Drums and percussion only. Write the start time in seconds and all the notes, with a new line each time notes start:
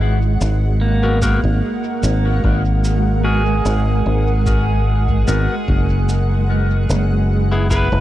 0.41 shaker
1.22 kick, shaker
2.03 shaker
2.44 kick
2.84 shaker
3.66 shaker
4.46 kick, shaker
5.08 kick
5.28 shaker
5.68 kick
6.09 shaker
6.90 shaker
7.71 kick, shaker